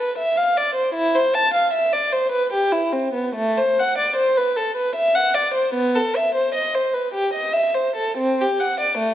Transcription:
0.00 0.17 B4 medium
0.18 0.36 E5 medium
0.37 0.56 F5 medium
0.57 0.76 D5 medium
0.75 0.94 C5 medium
0.94 1.14 E4 medium
1.15 1.34 C5 medium
1.34 1.53 A5 medium
1.54 1.73 F5 medium
1.73 1.92 E5 medium
1.93 2.12 D5 medium
2.12 2.32 C5 medium
2.32 2.52 B4 medium
2.53 2.72 G4 medium
2.72 2.93 E4 medium
2.93 3.13 C4 medium
3.13 3.34 B3 medium
3.35 3.56 A3 medium
3.57 3.77 C5 medium
3.79 3.98 F#5 medium
3.98 4.17 D5 medium
4.16 4.36 C5 medium
4.37 4.57 B4 medium
4.56 4.76 A4 medium
4.76 4.95 B4 medium
4.96 5.15 E5 medium
5.15 5.35 F#5 medium
5.34 5.54 D5 medium
5.54 5.74 C5 medium
5.74 5.94 B3 medium
5.96 6.15 A4 medium
6.16 6.35 E5 medium
6.35 6.54 C5 medium
6.55 6.74 D#5 medium
6.75 6.94 C5 medium
6.94 7.14 B4 medium
7.14 7.33 G4 medium
7.34 7.53 D#5 medium
7.53 7.74 E5 medium
7.74 7.95 C5 medium
7.96 8.16 A4 medium
8.17 8.38 C4 medium
8.41 8.60 G4 medium
8.60 8.79 F#5 medium
8.80 8.99 D5 medium
8.98 9.14 A3 medium

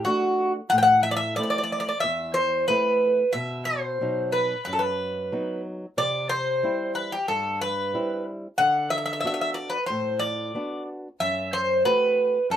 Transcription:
0.05 0.59 A3 medium
0.05 0.59 D4 soft
0.05 0.52 F#4 medium
0.05 0.59 F#4 medium
0.70 1.36 A2 medium
0.70 0.78 F#5 loud
0.78 0.82 G5 medium
0.83 1.02 F#5 loud
1.03 1.11 E5 medium
1.11 1.16 D5 medium
1.17 1.35 E5 medium
1.36 1.91 A3 soft
1.36 1.91 C4 soft
1.36 1.91 E4 medium
1.36 1.42 D5 medium
1.43 1.49 D5 medium
1.50 1.57 D5 medium
1.58 1.62 D5 medium
1.64 1.71 D5 medium
1.72 1.79 D5 medium
1.80 1.87 D5 medium
1.89 1.98 D5 medium
2.00 2.68 E2 medium
2.00 2.33 E5 medium
2.34 2.66 C5 medium
2.68 3.22 A3 soft
2.68 3.22 C4 soft
2.68 3.22 E4 medium
2.68 3.31 B4 medium
3.33 3.99 B2 medium
3.33 3.65 E5 loud
3.65 4.29 C5 medium
4.01 4.54 B2 soft
4.01 4.54 F#3 soft
4.01 4.54 D#4 medium
4.32 4.64 B4 medium
4.65 5.31 F#2 medium
4.65 4.72 B4 medium
4.73 4.80 A4 medium
4.79 5.60 B4 medium
5.32 5.85 F#3 soft
5.32 5.85 B3 soft
5.32 5.85 D#4 medium
5.97 6.61 C3 medium
5.97 6.29 D5 loud
6.29 6.92 C5 medium
6.63 7.16 G3 soft
6.63 7.16 C4 soft
6.63 7.16 E4 soft
6.95 7.11 B4 medium
7.12 7.28 G4 medium
7.28 7.92 G2 medium
7.28 7.59 A4 medium
7.61 8.23 B4 medium
7.94 8.46 G3 soft
7.94 8.46 C4 soft
7.94 8.47 E4 soft
8.58 9.23 D3 medium
8.58 8.90 F#5 loud
8.90 8.97 E5 medium
8.98 9.04 E5 medium
9.06 9.12 E5 medium
9.13 9.19 E5 medium
9.20 9.76 B3 soft
9.20 9.26 E5 medium
9.25 9.77 D4 soft
9.25 9.77 F#4 soft
9.25 9.33 E5 medium
9.34 9.40 E5 medium
9.41 9.50 E5 medium
9.54 9.71 D5 medium
9.70 9.86 B4 medium
9.86 10.53 A2 medium
9.86 10.18 C5 medium
10.19 10.82 D5 medium
10.55 11.07 B3 soft
10.55 11.07 D4 soft
10.55 11.07 F#4 medium
11.20 11.83 F#2 medium
11.20 11.54 E5 medium
11.53 11.83 C5 medium
11.85 12.37 A3 soft
11.85 12.37 C4 soft
11.85 12.37 F#4 medium
11.85 12.46 B4 medium
12.50 12.57 F#2 medium
12.50 12.57 A4 medium

